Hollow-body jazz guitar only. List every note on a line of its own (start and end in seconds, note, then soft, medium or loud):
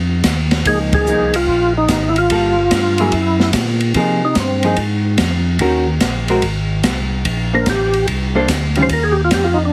0.65 1.05 F3 medium
0.65 1.06 A#3 medium
0.65 1.06 D#4 medium
1.08 1.32 F3 soft
1.08 1.32 A#3 soft
1.08 1.32 D#4 medium
2.31 2.55 G3 medium
2.31 2.55 A#3 soft
2.31 2.55 F4 medium
2.31 2.56 A4 medium
3.00 3.12 F#3 medium
3.00 3.12 A#3 medium
3.00 3.12 E4 medium
3.00 3.12 G#4 medium
3.96 4.20 F3 medium
3.96 4.20 A#3 medium
3.96 4.21 D#4 medium
3.96 4.21 G#4 soft
4.64 4.76 F3 medium
4.64 4.76 A#3 medium
4.64 4.77 D#4 medium
4.64 4.77 G#4 medium
5.60 5.85 D#3 medium
5.60 5.85 C#4 medium
5.60 5.85 F#4 medium
5.60 5.85 A#4 medium
6.30 6.42 G#3 medium
6.30 6.42 C4 medium
6.30 6.42 F#4 medium
6.30 6.42 A#4 medium
7.53 7.65 A#3 medium
7.53 7.66 D4 medium
7.53 7.66 A4 medium
7.53 7.66 C5 medium
8.35 8.48 A#3 medium
8.35 8.48 D4 medium
8.35 8.48 A4 medium
8.35 8.48 C5 medium
8.76 8.89 D#3 medium
8.76 8.89 G3 medium
8.76 8.89 C#4 medium
8.76 8.89 F4 medium